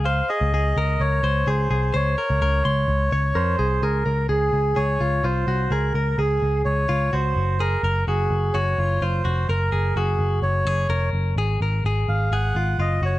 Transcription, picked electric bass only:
X:1
M:4/4
L:1/16
Q:1/4=127
K:Db
V:1 name="Picked electric bass" clef=bass
D,,2 z D,, D,,2 D,,2 D,,2 D,,2 D,,2 C,,2 | D,,2 z D,, D,,2 D,,2 D,,2 D,,2 F,,2 C,,2 | D,,2 D,,2 D,,2 D,,2 D,,2 D,,2 C,,2 C,,2 | D,,2 D,,2 D,,2 D,,2 D,,2 D,,2 D,,2 G,,,2- |
G,,,2 G,,,2 G,,,2 G,,,2 G,,,2 G,,,2 G,,,2 F,,,2 | G,,,2 G,,,2 G,,,2 G,,,2 G,,,2 G,,,2 F,,,2 G,,,2 | A,,,2 A,,,2 A,,,2 A,,,2 A,,,2 A,,,2 G,,,2 G,,,2 |]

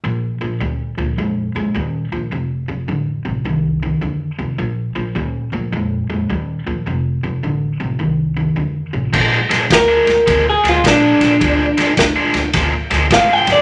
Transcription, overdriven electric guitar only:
X:1
M:4/4
L:1/16
Q:"Swing" 1/4=106
K:Bbmix
V:1 name="Overdriven electric guitar" clef=bass
[B,,F,]2 [B,,F,]2 [B,,G,]2 [B,,F,]2 [B,,A,]2 [B,,A,]2 [B,,G,]2 [B,,F,]2 | [F,,C,]2 [F,,C,]2 [F,,D,]2 [F,,C,]2 [F,,E,]2 [F,,E,]2 [F,,D,]2 [F,,C,]2 | [B,,F,]2 [B,,F,]2 [B,,G,]2 [B,,F,]2 [B,,A,]2 [B,,A,]2 [B,,G,]2 [B,,F,]2 | [F,,C,]2 [F,,C,]2 [F,,D,]2 [F,,C,]2 [F,,E,]2 [F,,E,]2 [F,,D,]2 [F,,C,]2 |
[B,,F,A,D] z [B,,F,A,D] z2 [B,,F,A,D] z2 [B,,F,A,D] z [B,,F,A,D] z [B,,F,A,D] [B,,F,A,D] [B,,F,A,D] z | [B,,F,A,D] z [B,,F,A,D] z2 [B,,F,A,D] z2 [B,,F,A,D] z [B,,F,A,D] z [B,,F,A,D] [B,,F,A,D] [B,,F,A,D] z |]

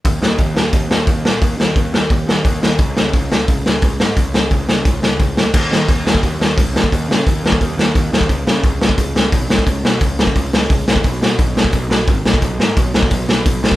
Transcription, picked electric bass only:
X:1
M:4/4
L:1/8
Q:1/4=175
K:Dbmix
V:1 name="Picked electric bass" clef=bass
E,, E,, E,, E,, E,, E,, E,, B,, | E,, E,, E,, E,, E,, E,, E,, E,, | D,, D,, D,, D,, D,, D,, D,, A,, | D,, D,, D,, D,, D,, D,, D,, =D,, |
E,, E, E,, E,, E,, E,, D,, E,, | E,, D, E,, E,, E,, E,, E,, E,, | ^C,, ^C, C,, C,, C,, C,, =B,,, C,, | ^C,, =B,, C,, C,, C,, C,, C,, C,, |
C,, C, C,, C,, C,, C,, A,,, C,, | C,, A,, C,, C,, C,, C,, C,, C,, |]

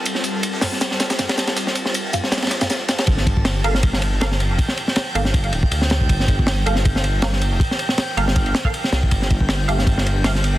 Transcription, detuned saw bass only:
X:1
M:4/4
L:1/16
Q:"Swing 16ths" 1/4=159
K:Fmix
V:1 name="Detuned saw bass" clef=bass
z16 | z16 | G,,,6 G,,,8- G,,, F,,, | z6 G,,,4 D,,, z D,,4 |
G,,,6 G,,,8- G,,, F,,, | z6 G,,,4 z4 C,,2 | G,,,6 G,,,8- G,,, F,,, |]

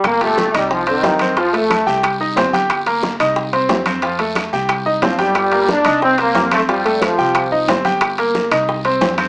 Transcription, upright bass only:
X:1
M:4/4
L:1/8
Q:1/4=180
K:Cdor
V:1 name="Upright bass" clef=bass
G,,,3 C,,3 F,,2- | F,,3 C,,3 G,,,2- | G,,,3 C,,3 F,,2- | F,,3 C,,3 G,,,2- |
G,,,3 C,,3 F,,2- | F,,3 C,,3 G,,,2- | G,,,3 C,,3 F,,2 |]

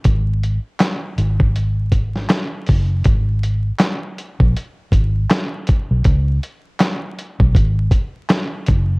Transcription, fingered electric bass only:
X:1
M:4/4
L:1/16
Q:"Swing 16ths" 1/4=80
K:C#dor
V:1 name="Fingered electric bass" clef=bass
G,,,3 z3 G,,,6 z2 F,,,2 | G,,,4 z3 A,,, z2 G,,,2 z3 B,,, | C,,2 z4 z B,,, G,,,2 z4 F,,,2 |]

